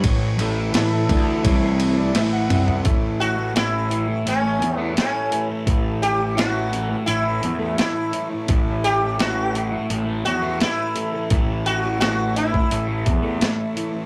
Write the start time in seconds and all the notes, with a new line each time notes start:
Already playing: C#5
0.04 A1 A2, kick, ride
0.38 A1 A2 E3 A3 E4, ride
0.73 A1 A2 B4, snare, ride
0.92 A4
1.09 D2 D3 D4 A4, kick, ride
1.44 C2 C3 C4 C#5, kick, ride
1.79 E3 A3, ride
1.97 D5
2.14 A1 A2 A3 E5, snare, ride
2.33 F#5
2.50 C2 C3 C4, mid tom, ride
2.68 floor tom
2.84 A1 A2 E3 A3 E4 A4 C#5 E5, kick, closed hi-hat
3.20 F#4, closed hi-hat
3.37 E3 A3
3.54 A2 E3 A3 E4, snare, closed hi-hat
3.89 A2 E3 A3, closed hi-hat
4.07 muted distorted electric guitar stroke
4.26 A1 C#4, closed hi-hat
4.42 E3 A3
4.60 E2, muted distorted electric guitar stroke, closed hi-hat
4.78 E3 A3 B3
4.94 A2 E3 A3, snare, closed hi-hat
4.98 C#4
5.30 A2 E3 A3, closed hi-hat
5.49 E3 A3
5.65 A1 A2 E3 A3, kick, closed hi-hat
6.02 G4, closed hi-hat
6.19 E3 A3
6.36 A2 E3 A3 F#4, snare, closed hi-hat
6.71 A2 E3 A3, closed hi-hat
6.90 muted distorted electric guitar stroke
7.06 A1 E4, closed hi-hat
7.23 E3 A3
7.42 E2, muted distorted electric guitar stroke, closed hi-hat
7.58 E3 A3
7.76 A2 E3 A3 E4, snare, closed hi-hat
8.12 A2 E3 A3, closed hi-hat
8.29 E3 A3
8.47 A1 A2 E3 A3, kick, closed hi-hat
8.84 G4, closed hi-hat
9.01 E3 A3
9.18 A2 E3 A3 F#4, snare, closed hi-hat
9.53 A2 E3 A3, closed hi-hat
9.71 muted distorted electric guitar stroke
9.90 A1, closed hi-hat
10.05 E3 A3
10.25 E2 F#4, muted distorted electric guitar stroke, closed hi-hat
10.42 E3 A3
10.58 A2 E3 A3 E4, snare, closed hi-hat
10.95 A2 E3 A3, closed hi-hat
11.12 E3 A3
11.30 A1 A2 E3 A3, kick, closed hi-hat
11.66 F#4, closed hi-hat
11.83 E3 A3
11.99 A2 E3 A3 F#4, snare, closed hi-hat
12.34 A2 E3 A3 E4, closed hi-hat
12.53 muted distorted electric guitar stroke, kick
12.71 A1, closed hi-hat
12.87 E3 A3
13.06 E2, muted distorted electric guitar stroke, kick, closed hi-hat
13.22 E3 A3
13.39 A2 E3 A3, snare, closed hi-hat
13.74 A2 E3 A3, closed hi-hat
13.92 E3 A3